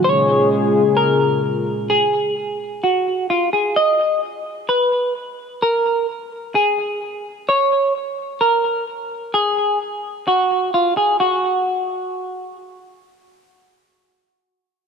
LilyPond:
<<
  \new Staff \with { instrumentName = "Clean electric guitar" } { \time 4/4 \key bes \phrygian \tempo 4 = 129 des''4 r4 bes'4 r4 | aes'4 r4 ges'4 f'8 aes'8 | ees''4 r4 ces''4 r4 | bes'4 r4 aes'4 r4 |
des''4 r4 bes'4 r4 | aes'4 r4 ges'4 f'8 aes'8 | ges'2. r4 | r1 | }
  \new Staff \with { instrumentName = "Analog synth pad" } { \clef bass \time 4/4 \key bes \phrygian <bes, des aes f' aes'>1 | r1 | r1 | r1 |
r1 | r1 | r1 | r1 | }
>>